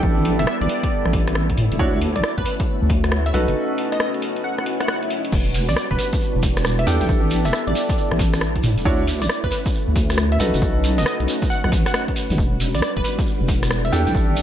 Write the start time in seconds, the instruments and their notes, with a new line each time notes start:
Already playing: string machine G3 B3 D4, ambient pad B3 E4 A4 D5, grand piano D4 E4 G4 A4
0.03 wobble bass A1, string machine E4, kick
0.25 open hi-hat
0.39 wobble bass E1, digital synth lead E5, cross-stick, closed hi-hat
0.47 digital synth lead E5, cross-stick
0.61 wobble bass A1, digital synth lead D5, closed hi-hat
0.69 open hi-hat
0.83 kick, closed hi-hat
1.05 wobble bass A1, cross-stick
1.13 kick, open hi-hat
1.28 cross-stick, closed hi-hat
1.35 cross-stick
1.50 kick, closed hi-hat
1.57 wobble bass A2, open hi-hat
1.72 wobble bass E1, closed hi-hat
1.79 wobble bass D2, string machine A3 C#4 F#4, ambient pad C#4, grand piano D4 E4 F#4 C#5, kick
2.02 open hi-hat
2.16 wobble bass A1, digital synth lead D5, cross-stick, closed hi-hat
2.23 ambient pad F#4, digital synth lead D5, cross-stick
2.38 wobble bass D2, digital synth lead B4, ambient pad B4, kick, closed hi-hat
2.45 digital synth lead B4, open hi-hat
2.60 kick, closed hi-hat
2.82 wobble bass D2
2.90 kick, open hi-hat
3.04 cross-stick, closed hi-hat
3.12 cross-stick
3.26 digital synth lead E5, closed hi-hat
3.34 wobble bass B1, string machine C#4 D#4, grand piano D#4 F#4 A4 B4, open hi-hat
3.48 wobble bass F#1, closed hi-hat
3.78 open hi-hat
3.92 digital synth lead D#5, ambient pad D#5, cross-stick, closed hi-hat
4.00 digital synth lead D#5, cross-stick
4.14 closed hi-hat
4.22 open hi-hat
4.36 closed hi-hat
4.44 digital synth lead F#5, swell
4.58 digital synth lead F#5, cross-stick
4.66 open hi-hat
4.80 digital synth lead F#5, cross-stick, closed hi-hat
4.88 digital synth lead F#5, cross-stick
5.03 closed hi-hat
5.10 open hi-hat
5.25 closed hi-hat
5.32 wobble bass E1, string machine G3 B3 D4, ambient pad B3, kick, crash, shekere
5.45 ambient pad E4
5.54 open hi-hat, shekere
5.60 ambient pad D5
5.69 wobble bass B1, digital synth lead D5, cross-stick, closed hi-hat, shekere
5.76 digital synth lead D5, cross-stick, shekere
5.91 wobble bass E1, digital synth lead B4, kick, closed hi-hat
5.99 ambient pad A4, digital synth lead B4, open hi-hat, shekere
6.13 kick, closed hi-hat, shekere
6.21 shekere
6.35 wobble bass E1
6.43 kick, open hi-hat, shekere
6.57 cross-stick, closed hi-hat, shekere
6.65 cross-stick, shekere
6.79 digital synth lead E5, closed hi-hat
6.87 wobble bass E2, grand piano D4 E4 G4 A4, digital synth lead G5, open hi-hat, shekere
7.01 wobble bass B1, digital synth lead G5, closed hi-hat, shekere
7.09 wobble bass A1, string machine E4, kick, shekere
7.31 open hi-hat, shekere
7.45 wobble bass E1, digital synth lead E5, cross-stick, closed hi-hat, shekere
7.53 digital synth lead E5, cross-stick, shekere
7.67 wobble bass A1, digital synth lead D5, closed hi-hat
7.75 open hi-hat, shekere
7.89 kick, closed hi-hat, shekere
7.98 shekere
8.11 wobble bass A1, cross-stick
8.19 kick, open hi-hat, shekere
8.33 cross-stick, closed hi-hat, shekere
8.41 cross-stick, shekere
8.56 kick, closed hi-hat
8.63 wobble bass A2, open hi-hat, shekere
8.78 wobble bass E1, closed hi-hat, shekere
8.85 wobble bass D2, string machine A3 C#4 F#4, ambient pad C#4, grand piano D4 E4 F#4 C#5, kick, shekere
9.07 open hi-hat, shekere
9.22 wobble bass A1, digital synth lead D5, cross-stick, closed hi-hat, shekere
9.29 ambient pad F#4, digital synth lead D5, cross-stick, shekere
9.38 ambient pad B4
9.44 wobble bass D2, digital synth lead B4, kick, closed hi-hat
9.51 digital synth lead B4, open hi-hat, shekere
9.66 kick, closed hi-hat, shekere
9.74 shekere
9.88 wobble bass D2
9.96 kick, open hi-hat, shekere
10.10 cross-stick, closed hi-hat, shekere
10.18 cross-stick
10.32 digital synth lead E5, closed hi-hat
10.40 wobble bass B1, string machine C#4 D#4, grand piano D#4 F#4 A4 B4, open hi-hat, shekere
10.54 wobble bass F#1, closed hi-hat, shekere
10.62 wobble bass B1, kick, shekere
10.84 open hi-hat, shekere
10.98 wobble bass F#1, digital synth lead D#5, cross-stick, closed hi-hat, shekere
11.06 digital synth lead D#5, cross-stick, shekere
11.20 wobble bass B1, closed hi-hat
11.28 ambient pad D#5, open hi-hat, shekere
11.42 kick, closed hi-hat, shekere
11.50 digital synth lead F#5, shekere
11.64 wobble bass B1, digital synth lead F#5, cross-stick
11.72 wobble bass A1, kick, open hi-hat, shekere
11.86 digital synth lead F#5, cross-stick, closed hi-hat, shekere
11.94 digital synth lead F#5, cross-stick, shekere
12.08 kick, closed hi-hat
12.16 open hi-hat, shekere
12.30 wobble bass A1, closed hi-hat, shekere
12.38 wobble bass E1, string machine G3 B3 D4, ambient pad B3, kick, shekere
12.53 ambient pad E4 A4
12.60 open hi-hat, shekere
12.75 wobble bass B1, digital synth lead D5, cross-stick, closed hi-hat, shekere
12.82 digital synth lead D5, cross-stick, shekere
12.97 wobble bass E1, digital synth lead B4, kick, closed hi-hat
13.04 digital synth lead B4, open hi-hat, shekere
13.19 ambient pad D5, kick, closed hi-hat, shekere
13.26 shekere
13.41 wobble bass E1
13.48 kick, open hi-hat, shekere
13.63 cross-stick, closed hi-hat, shekere
13.71 cross-stick, shekere
13.85 digital synth lead E5, closed hi-hat
13.92 wobble bass E2, grand piano D4 E4 G4 A4, digital synth lead G5, open hi-hat, shekere
14.07 wobble bass B1, digital synth lead G5, closed hi-hat, shekere
14.15 wobble bass A1, string machine B3 D4 E4, kick, shekere
14.36 open hi-hat, shekere